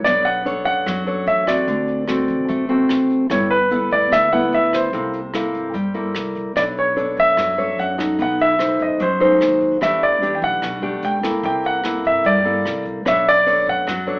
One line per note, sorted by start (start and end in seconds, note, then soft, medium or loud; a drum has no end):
0.04 0.62 B1 medium
0.04 0.85 B3 soft
0.04 0.43 D4 soft
0.04 0.43 A4 soft
0.04 0.43 C#5 soft
0.04 0.26 D5 medium
0.04 kick soft
0.04 cross-stick medium
0.04 closed hi-hat soft
0.25 0.64 F#5 medium
0.25 closed hi-hat soft
0.45 1.03 D4 soft
0.45 1.04 A4 medium
0.45 1.04 C#5 medium
0.45 closed hi-hat soft
0.65 0.85 F#2 medium
0.65 1.23 F#5 medium
0.65 kick soft
0.65 closed hi-hat soft
0.86 1.24 F#2 medium
0.86 1.66 F#3 soft
0.86 kick soft
0.86 cross-stick soft
0.86 closed hi-hat soft
1.06 1.44 D4 medium
1.06 1.44 A4 medium
1.06 1.44 C#5 medium
1.06 closed hi-hat soft
1.26 1.65 A1 medium
1.26 1.48 E5 medium
1.26 closed hi-hat soft
1.47 2.05 C4 soft
1.47 2.05 F#4 medium
1.47 2.05 A4 medium
1.47 2.66 D5 medium
1.47 kick soft
1.47 cross-stick medium
1.47 closed hi-hat soft
1.67 2.25 D2 medium
1.67 2.47 D3 soft
1.67 kick medium
1.67 closed hi-hat soft
1.88 closed hi-hat soft
2.08 2.66 C4 medium
2.08 2.66 F#4 medium
2.08 2.66 A4 medium
2.08 cross-stick medium
2.08 closed hi-hat soft
2.28 2.47 A1 medium
2.28 kick medium
2.28 closed hi-hat soft
2.48 2.87 A1 medium
2.48 3.28 A3 soft
2.48 kick medium
2.48 closed hi-hat soft
2.69 3.27 C4 medium
2.69 3.27 F#4 medium
2.69 3.27 A4 medium
2.69 closed hi-hat soft
2.89 3.27 A1 medium
2.89 cross-stick medium
2.89 closed hi-hat soft
3.10 kick soft
3.10 closed hi-hat soft
3.30 3.87 G1 medium
3.30 4.10 G3 soft
3.30 3.56 B3 soft
3.30 3.57 E4 soft
3.30 3.57 A4 soft
3.30 3.50 C#5 medium
3.30 kick medium
3.30 cross-stick medium
3.30 closed hi-hat soft
3.50 3.93 B4 medium
3.50 closed hi-hat soft
3.70 4.29 B3 medium
3.70 4.29 E4 medium
3.70 4.29 A4 medium
3.70 closed hi-hat soft
3.91 4.10 D2 medium
3.91 4.13 D5 medium
3.91 kick soft
3.91 closed hi-hat soft
4.11 4.50 D2 medium
4.11 4.91 D3 soft
4.11 4.31 E5 loud
4.11 kick medium
4.11 cross-stick soft
4.11 closed hi-hat soft
4.32 4.90 B3 medium
4.32 4.90 E4 medium
4.32 4.91 A4 medium
4.32 4.53 F#5 medium
4.32 closed hi-hat soft
4.52 4.90 D2 medium
4.52 4.74 E5 medium
4.52 closed hi-hat soft
4.73 6.12 C5 medium
4.73 kick soft
4.73 cross-stick medium
4.73 closed hi-hat soft
4.93 5.50 C2 medium
4.93 5.73 C3 soft
4.93 5.19 A#3 soft
4.93 5.20 E4 soft
4.93 5.20 A4 medium
4.93 kick medium
4.93 closed hi-hat soft
5.13 closed hi-hat soft
5.34 5.74 A#3 soft
5.34 5.75 E4 medium
5.34 5.75 A4 medium
5.34 cross-stick medium
5.34 closed hi-hat soft
5.54 5.73 G2 medium
5.54 closed hi-hat soft
5.74 6.12 G2 medium
5.74 6.54 G3 soft
5.74 kick medium
5.74 closed hi-hat soft
5.94 6.52 A#3 medium
5.94 6.53 E4 medium
5.94 6.53 A4 medium
5.94 closed hi-hat soft
6.15 6.53 C2 medium
6.15 cross-stick medium
6.15 closed hi-hat soft
6.35 kick medium
6.35 closed hi-hat soft
6.56 7.13 B1 medium
6.56 7.35 B3 soft
6.56 6.93 D4 soft
6.56 6.94 A4 soft
6.56 6.94 C#5 medium
6.56 6.62 D5 medium
6.56 kick medium
6.56 cross-stick medium
6.56 closed hi-hat soft
6.76 7.15 C#5 medium
6.76 closed hi-hat soft
6.96 7.54 D4 medium
6.96 7.54 A4 medium
6.96 7.54 C#5 medium
6.96 closed hi-hat soft
7.17 7.36 F#2 medium
7.17 7.81 E5 loud
7.17 kick soft
7.17 closed hi-hat soft
7.37 7.75 F#2 medium
7.37 8.17 F#3 soft
7.37 kick medium
7.37 cross-stick soft
7.37 closed hi-hat soft
7.57 7.95 D4 soft
7.57 7.95 A4 medium
7.57 7.95 C#5 medium
7.57 closed hi-hat soft
7.78 8.16 F#2 medium
7.78 8.21 F#5 medium
7.78 closed hi-hat soft
7.98 8.56 D#4 medium
7.98 8.56 A4 medium
7.98 kick soft
7.98 cross-stick medium
7.98 closed hi-hat soft
8.19 8.76 B1 medium
8.19 8.98 B3 soft
8.19 8.41 F#5 medium
8.19 kick medium
8.19 closed hi-hat soft
8.39 8.82 E5 medium
8.39 closed hi-hat soft
8.59 9.00 D#4 soft
8.59 9.00 A4 medium
8.59 9.00 C5 medium
8.59 cross-stick medium
8.59 closed hi-hat soft
8.79 8.99 F#2 medium
8.79 9.02 D#5 medium
8.79 kick soft
8.79 closed hi-hat soft
9.00 9.38 F#2 medium
9.00 9.79 F#3 soft
9.00 9.58 C5 medium
9.00 kick medium
9.00 closed hi-hat soft
9.20 9.78 D#4 medium
9.20 9.78 A4 medium
9.20 9.78 C5 medium
9.20 closed hi-hat soft
9.41 9.79 D#2 medium
9.41 cross-stick medium
9.41 closed hi-hat soft
9.61 kick soft
9.61 closed hi-hat soft
9.81 10.38 E2 medium
9.81 10.60 E3 soft
9.81 10.19 A3 soft
9.81 10.19 D4 soft
9.81 10.19 G4 medium
9.81 10.03 E5 medium
9.81 kick medium
9.81 cross-stick medium
9.81 closed hi-hat soft
10.02 10.37 D5 medium
10.02 closed hi-hat soft
10.22 10.79 A3 medium
10.22 10.80 D4 medium
10.22 10.80 G4 medium
10.22 closed hi-hat soft
10.35 10.42 G5 medium
10.42 10.61 B1 medium
10.42 11.06 F#5 medium
10.42 kick soft
10.42 closed hi-hat soft
10.62 11.00 B1 medium
10.62 11.41 B2 soft
10.62 kick soft
10.62 cross-stick medium
10.62 closed hi-hat soft
10.82 11.20 A3 medium
10.82 11.20 D4 medium
10.82 11.20 G4 medium
10.82 closed hi-hat soft
11.02 11.40 C#2 medium
11.02 11.44 G5 medium
11.02 closed hi-hat soft
11.23 11.81 A#3 medium
11.23 11.81 E4 medium
11.23 11.81 A4 medium
11.23 kick soft
11.23 cross-stick medium
11.23 closed hi-hat soft
11.43 12.00 C2 medium
11.43 12.23 C3 soft
11.43 11.65 G5 medium
11.43 kick medium
11.43 closed hi-hat soft
11.63 12.07 F#5 medium
11.63 closed hi-hat soft
11.84 12.42 A#3 medium
11.84 12.42 E4 soft
11.84 12.42 A4 medium
11.84 cross-stick medium
11.84 closed hi-hat soft
12.04 12.23 G2 medium
12.04 12.26 E5 medium
12.04 closed hi-hat soft
12.25 12.62 G2 medium
12.25 13.04 G3 soft
12.25 12.82 D5 medium
12.25 kick medium
12.25 closed hi-hat soft
12.45 13.02 A#3 medium
12.45 13.03 E4 medium
12.45 13.03 A4 medium
12.45 closed hi-hat soft
12.65 13.03 C2 medium
12.65 cross-stick medium
12.65 closed hi-hat soft
12.85 kick soft
12.85 closed hi-hat soft
13.05 13.63 B1 medium
13.05 13.85 B3 soft
13.05 13.32 D4 soft
13.05 13.32 A4 soft
13.05 13.32 C#5 medium
13.05 13.28 E5 medium
13.05 kick medium
13.05 cross-stick medium
13.05 closed hi-hat soft
13.26 13.65 D5 loud
13.26 closed hi-hat soft
13.46 13.87 D4 medium
13.46 13.87 A4 medium
13.46 13.87 C#5 medium
13.46 closed hi-hat soft
13.67 13.86 F#2 medium
13.67 14.20 F#5 medium
13.67 kick soft
13.67 closed hi-hat soft
13.87 14.20 F#2 medium
13.87 14.20 F#3 soft
13.87 kick medium
13.87 cross-stick medium
13.87 closed hi-hat soft
14.07 14.20 D4 medium
14.07 14.20 A4 medium
14.07 14.20 C#5 medium
14.07 closed hi-hat soft